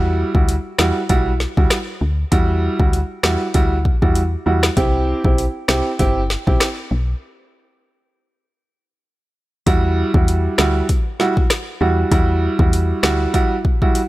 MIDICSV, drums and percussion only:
0, 0, Header, 1, 2, 480
1, 0, Start_track
1, 0, Key_signature, 1, "minor"
1, 0, Tempo, 612245
1, 1818, Time_signature, 4, 2, 24, 8
1, 11041, End_track
2, 0, Start_track
2, 0, Title_t, "Drums"
2, 272, Note_on_c, 9, 36, 94
2, 350, Note_off_c, 9, 36, 0
2, 381, Note_on_c, 9, 42, 67
2, 459, Note_off_c, 9, 42, 0
2, 615, Note_on_c, 9, 37, 96
2, 618, Note_on_c, 9, 38, 119
2, 694, Note_off_c, 9, 37, 0
2, 697, Note_off_c, 9, 38, 0
2, 858, Note_on_c, 9, 42, 72
2, 860, Note_on_c, 9, 36, 84
2, 936, Note_off_c, 9, 42, 0
2, 938, Note_off_c, 9, 36, 0
2, 1099, Note_on_c, 9, 38, 65
2, 1177, Note_off_c, 9, 38, 0
2, 1234, Note_on_c, 9, 36, 89
2, 1312, Note_off_c, 9, 36, 0
2, 1335, Note_on_c, 9, 37, 96
2, 1338, Note_on_c, 9, 42, 81
2, 1339, Note_on_c, 9, 38, 125
2, 1414, Note_off_c, 9, 37, 0
2, 1416, Note_off_c, 9, 42, 0
2, 1417, Note_off_c, 9, 38, 0
2, 1818, Note_on_c, 9, 36, 102
2, 1818, Note_on_c, 9, 42, 78
2, 1896, Note_off_c, 9, 36, 0
2, 1896, Note_off_c, 9, 42, 0
2, 2192, Note_on_c, 9, 36, 102
2, 2270, Note_off_c, 9, 36, 0
2, 2300, Note_on_c, 9, 42, 67
2, 2378, Note_off_c, 9, 42, 0
2, 2535, Note_on_c, 9, 37, 95
2, 2538, Note_on_c, 9, 38, 116
2, 2613, Note_off_c, 9, 37, 0
2, 2616, Note_off_c, 9, 38, 0
2, 2777, Note_on_c, 9, 42, 72
2, 2780, Note_on_c, 9, 36, 83
2, 2855, Note_off_c, 9, 42, 0
2, 2858, Note_off_c, 9, 36, 0
2, 3020, Note_on_c, 9, 36, 91
2, 3098, Note_off_c, 9, 36, 0
2, 3154, Note_on_c, 9, 36, 86
2, 3232, Note_off_c, 9, 36, 0
2, 3257, Note_on_c, 9, 42, 80
2, 3336, Note_off_c, 9, 42, 0
2, 3629, Note_on_c, 9, 37, 91
2, 3632, Note_on_c, 9, 38, 112
2, 3708, Note_off_c, 9, 37, 0
2, 3711, Note_off_c, 9, 38, 0
2, 3738, Note_on_c, 9, 42, 78
2, 3739, Note_on_c, 9, 36, 107
2, 3817, Note_off_c, 9, 36, 0
2, 3817, Note_off_c, 9, 42, 0
2, 4112, Note_on_c, 9, 36, 101
2, 4190, Note_off_c, 9, 36, 0
2, 4221, Note_on_c, 9, 42, 68
2, 4299, Note_off_c, 9, 42, 0
2, 4455, Note_on_c, 9, 37, 93
2, 4458, Note_on_c, 9, 38, 112
2, 4534, Note_off_c, 9, 37, 0
2, 4537, Note_off_c, 9, 38, 0
2, 4699, Note_on_c, 9, 42, 69
2, 4701, Note_on_c, 9, 36, 82
2, 4777, Note_off_c, 9, 42, 0
2, 4779, Note_off_c, 9, 36, 0
2, 4940, Note_on_c, 9, 38, 63
2, 5019, Note_off_c, 9, 38, 0
2, 5074, Note_on_c, 9, 36, 88
2, 5153, Note_off_c, 9, 36, 0
2, 5177, Note_on_c, 9, 37, 97
2, 5179, Note_on_c, 9, 42, 80
2, 5180, Note_on_c, 9, 38, 124
2, 5256, Note_off_c, 9, 37, 0
2, 5258, Note_off_c, 9, 42, 0
2, 5259, Note_off_c, 9, 38, 0
2, 7579, Note_on_c, 9, 36, 110
2, 7579, Note_on_c, 9, 42, 81
2, 7657, Note_off_c, 9, 36, 0
2, 7657, Note_off_c, 9, 42, 0
2, 7952, Note_on_c, 9, 36, 103
2, 8030, Note_off_c, 9, 36, 0
2, 8060, Note_on_c, 9, 42, 69
2, 8138, Note_off_c, 9, 42, 0
2, 8296, Note_on_c, 9, 37, 99
2, 8299, Note_on_c, 9, 38, 125
2, 8374, Note_off_c, 9, 37, 0
2, 8377, Note_off_c, 9, 38, 0
2, 8538, Note_on_c, 9, 42, 74
2, 8540, Note_on_c, 9, 36, 86
2, 8617, Note_off_c, 9, 42, 0
2, 8619, Note_off_c, 9, 36, 0
2, 8779, Note_on_c, 9, 38, 66
2, 8858, Note_off_c, 9, 38, 0
2, 8914, Note_on_c, 9, 36, 96
2, 8992, Note_off_c, 9, 36, 0
2, 9016, Note_on_c, 9, 37, 100
2, 9018, Note_on_c, 9, 42, 85
2, 9019, Note_on_c, 9, 38, 124
2, 9095, Note_off_c, 9, 37, 0
2, 9097, Note_off_c, 9, 42, 0
2, 9098, Note_off_c, 9, 38, 0
2, 9499, Note_on_c, 9, 36, 106
2, 9499, Note_on_c, 9, 42, 82
2, 9577, Note_off_c, 9, 36, 0
2, 9577, Note_off_c, 9, 42, 0
2, 9872, Note_on_c, 9, 36, 102
2, 9950, Note_off_c, 9, 36, 0
2, 9981, Note_on_c, 9, 42, 68
2, 10059, Note_off_c, 9, 42, 0
2, 10216, Note_on_c, 9, 37, 97
2, 10219, Note_on_c, 9, 38, 127
2, 10295, Note_off_c, 9, 37, 0
2, 10298, Note_off_c, 9, 38, 0
2, 10459, Note_on_c, 9, 42, 73
2, 10460, Note_on_c, 9, 36, 85
2, 10537, Note_off_c, 9, 42, 0
2, 10539, Note_off_c, 9, 36, 0
2, 10700, Note_on_c, 9, 36, 93
2, 10778, Note_off_c, 9, 36, 0
2, 10833, Note_on_c, 9, 36, 90
2, 10912, Note_off_c, 9, 36, 0
2, 10938, Note_on_c, 9, 42, 82
2, 11016, Note_off_c, 9, 42, 0
2, 11041, End_track
0, 0, End_of_file